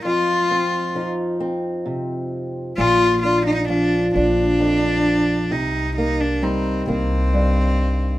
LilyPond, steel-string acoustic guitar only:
\new Staff \with { instrumentName = "Steel-string acoustic guitar" } { \clef bass \time 6/8 \key bes \major \tempo 4. = 44 << { r8 c'8 ees'8 c'4. | r8 d'8 f'8 d'4. | r8 bes8 ees'8 bes4. | } \\ { f,4 f4 c4 | bes,4 f4 f,4 | c4 g4 g,4 | } >> }